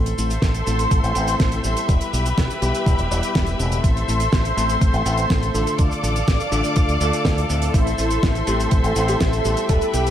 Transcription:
Already playing: A1 A2 A3 C4 E4 A4 C5 E5 C6
0.06 closed hi-hat, cabasa
0.18 A1 A2 A3 C4 E4 A4, closed hi-hat, cabasa
0.30 closed hi-hat, cabasa
0.42 A1, kick, snare, closed hi-hat, cabasa
0.54 closed hi-hat, cabasa
0.67 A1 A2 A3 C4 E4 A4, closed hi-hat, cabasa
0.79 closed hi-hat, cabasa
0.91 A1, kick, closed hi-hat, cabasa
1.04 A1, closed hi-hat, cabasa
1.15 A1 A2 A3 C4 E4 A4, closed hi-hat, cabasa
1.28 closed hi-hat, cabasa
1.40 A1, kick, snare, closed hi-hat, cabasa
1.52 closed hi-hat, cabasa
1.64 A1 G3 B3 E4 G4, closed hi-hat, cabasa
1.77 closed hi-hat, cabasa
1.89 E1 G4 B4 B5, kick, closed hi-hat, cabasa
2.01 closed hi-hat, cabasa
2.13 B1 G3 B3 E4 G4, closed hi-hat, cabasa
2.26 closed hi-hat, cabasa
2.38 B1, kick, snare, closed hi-hat, cabasa
2.50 closed hi-hat, cabasa
2.62 B1 G3 B3 E4 G4, closed hi-hat, cabasa
2.74 closed hi-hat, cabasa
2.86 E1, kick, closed hi-hat, cabasa
2.98 E1, closed hi-hat, cabasa
3.11 E1 G3 B3 E4 G4, closed hi-hat, cabasa
3.23 closed hi-hat, cabasa
3.35 E1, kick, snare, closed hi-hat, cabasa
3.46 closed hi-hat, cabasa
3.59 E1 A2 A3 C4 E4 A4, closed hi-hat, cabasa
3.72 closed hi-hat, cabasa
3.84 A1 A4 C5 C6, kick, closed hi-hat, cabasa
3.97 closed hi-hat, cabasa
4.08 A1 A2 A3 C4 E4 A4, closed hi-hat, cabasa
4.20 closed hi-hat, cabasa
4.33 A1, kick, snare, closed hi-hat, cabasa
4.45 closed hi-hat, cabasa
4.57 A1 A2 A3 C4 E4 A4, closed hi-hat, cabasa
4.69 closed hi-hat, cabasa
4.81 A1, kick, closed hi-hat, cabasa
4.94 A1, closed hi-hat, cabasa
5.06 A1 A2 A3 C4 E4 A4, closed hi-hat, cabasa
5.17 closed hi-hat, cabasa
5.30 A1, kick, snare, closed hi-hat, cabasa
5.43 closed hi-hat, cabasa
5.55 A1 D3 A3 D4 F4 A4, closed hi-hat, cabasa
5.67 closed hi-hat, cabasa
5.79 D2 D5 F5 D6, kick, closed hi-hat, cabasa
5.91 closed hi-hat, cabasa
6.03 A1 D3 A3 D4 F4 A4, closed hi-hat, cabasa
6.16 closed hi-hat, cabasa
6.28 A1, kick, snare, closed hi-hat, cabasa
6.40 closed hi-hat, cabasa
6.52 A1 D3 A3 D4 F4 A4, closed hi-hat, cabasa
6.64 closed hi-hat, cabasa
6.76 D2, kick, closed hi-hat, cabasa
6.89 D2, closed hi-hat, cabasa
7.01 D2 D3 A3 D4 F4 A4, closed hi-hat, cabasa
7.13 closed hi-hat, cabasa
7.25 D2, kick, snare, closed hi-hat, cabasa
7.38 closed hi-hat, cabasa
7.50 D2 A2 A3 C4 E4 A4, closed hi-hat, cabasa
7.62 closed hi-hat, cabasa
7.74 A1 E4 C5 E5 C6, kick, closed hi-hat, cabasa
7.87 closed hi-hat, cabasa
7.98 A1 A2 A3 C4 E4 A4, closed hi-hat, cabasa
8.11 closed hi-hat, cabasa
8.23 A1, kick, snare, closed hi-hat, cabasa
8.35 closed hi-hat, cabasa
8.47 A1 A2 A3 C4 E4 G4 A4, closed hi-hat, cabasa
8.60 closed hi-hat, cabasa
8.71 A1 A4, kick, closed hi-hat, cabasa
8.84 A1, closed hi-hat, cabasa
8.96 A1 A2 A3 C4 E4 A4, closed hi-hat, cabasa
9.08 G4, closed hi-hat, cabasa
9.21 A1 A4, kick, snare, closed hi-hat, cabasa
9.33 closed hi-hat, cabasa
9.45 A1 G3 B3 E4 G4, closed hi-hat, cabasa
9.57 closed hi-hat, cabasa
9.69 E1 G4 A4 B4 B5, kick, closed hi-hat, cabasa
9.81 closed hi-hat, cabasa
9.94 B1 G3 B3 E4 G4, closed hi-hat, cabasa
10.07 closed hi-hat, cabasa

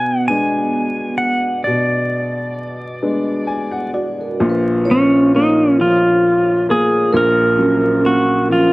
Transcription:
Already playing: B2 B3 G#5
0.28 G#3 B3 D4 G#5
1.18 F#5
1.64 B2 D5
3.02 G#3 B3 D4
3.47 G#5
3.71 F#5
3.94 F#4 D5
4.21 A#4
4.40 A#1 A#2
4.49 B4
4.85 F3 C#5
4.91 C#4
5.34 A#3 D#4
5.78 F3 F4
6.69 A#3 G#4
7.13 A#1 A#2 A#4
7.17 A#4
7.58 F#3 C#4
8.04 A#3 F#4
8.48 F3 F4

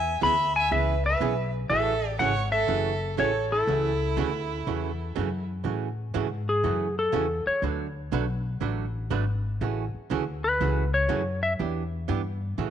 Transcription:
Already playing: E2 E5 G#5
0.21 D2 E3 B3 C#4 G#4 E5 B5
0.56 E5 G#5
0.71 C#2 E3 B3 C#4 G#4 B4 E5
1.06 B4 E5
1.20 B1 E3 B3 C#4 G#4
1.70 A1 C#3 E3 A3 C#4 F#4 A4 E5
2.19 G#1 C#3 E3 A3 C#4 F#4 C#5 F#5
2.52 A4 E5
2.68 F#1 C#3 E3 A3 C#4 F#4
3.17 A1 C#3 E3 A3 C#4 F#4 A4 C#5
3.52 E4 A4
3.67 C#2 C#3 E3 A3 C#4 F#4
4.17 D2 C#3 E3 A3 C#4 F#4
4.67 E2 C#3 E3 A3 C#4 F#4
5.16 F#2 C#3 E3 A3 C#4 F#4
5.64 A2 C#3 E3 A3 C#4 F#4
6.14 G#2 C#3 E3 A3 C#4 F#4
6.49 G#4
6.64 F#2 C#3 E3 A3 C#4 F#4
6.99 A4
7.12 E2 C#3 E3 A3 C#4 F#4
7.46 C#5, muted upright bass stroke
7.62 D2 D3 F#3 A3 D4 F#4 B4
8.12 B1 D3 F#3 A3 D4 F#4 B4
8.61 A1 D3 F#3 A3 D4 F#4 B4
9.10 G#1 D3 F#3 A3 D4 F#4 B4
9.61 A1 C#3 E3 A3 C#4 F#4
9.94 muted upright bass stroke
10.10 D2 C#3 E3 A3 C#4 F#4
10.44 B4
10.61 C#2 C#3 E3 A3 C#4 F#4
10.94 C#5
11.09 F#2 C#3 E3 A3 C#4 F#4
11.43 E5
11.59 E2 E3 B3 D4 G4
12.08 G2 E3 B3 D4 G4
12.58 A2 C#3 E3 A3 C#4 F#4

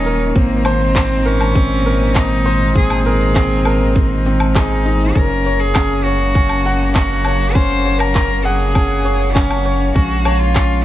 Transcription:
Already playing: D#1 D#3 F#3 A#3 C#4 D#4 A#4 C#5
0.05 A#4, shaker
0.20 shaker
0.35 G#1 A#2 G#3 A#3 C4 D#4, kick, shaker
0.65 C5, low woodblock, shaker
0.80 C4, shaker
0.96 C4, kick, clap, shaker
1.25 C#4 A#4, shaker
1.41 low woodblock, shaker
1.55 C4, kick, shaker
1.86 A#4, shaker
2.01 shaker
2.15 C4 D#4, kick, clap, low woodblock, shaker
2.45 C5, shaker
2.61 shaker
2.76 C4 G#4, kick, shaker
2.90 low woodblock
3.05 G#4 A#4, shaker
3.20 shaker
3.35 C4, kick, clap, shaker
3.65 A#4, low woodblock, shaker
3.80 shaker
3.96 C4, kick, shaker
4.25 C4, shaker
4.40 low woodblock, shaker
4.55 D#4 G#4, kick, clap, shaker
4.85 D#4, shaker
5.00 shaker
5.15 F#1 C#3 F#3 A#3 C#4 A#4, kick, shaker
5.45 C#5, shaker
5.60 G#4, shaker
5.75 C#4, kick, clap, low woodblock, shaker
6.04 F#4 C#5, shaker
6.20 shaker
6.35 C#4, kick, shaker
6.49 low woodblock
6.65 F#5, shaker
6.80 shaker
6.95 C#4 F#4, kick, clap, shaker
7.25 C#5, low woodblock, shaker
7.40 shaker
7.53 C#4 C5, kick, shaker
7.85 C#5, shaker
7.99 A#4, low woodblock, shaker
8.15 C#4, kick, clap, shaker
8.44 G#4 F#5, shaker
8.60 shaker
8.75 C#4, kick, low woodblock, shaker
9.05 C#5, shaker
9.20 shaker
9.33 C#4, kick, clap, shaker
9.51 low woodblock
9.65 C#5, shaker
9.80 shaker
9.94 A#1 C#3 G#3 C#4 F#4 F5, kick, shaker
10.25 C#5, low woodblock, shaker
10.38 F4, shaker
10.55 C#4, kick, clap, shaker

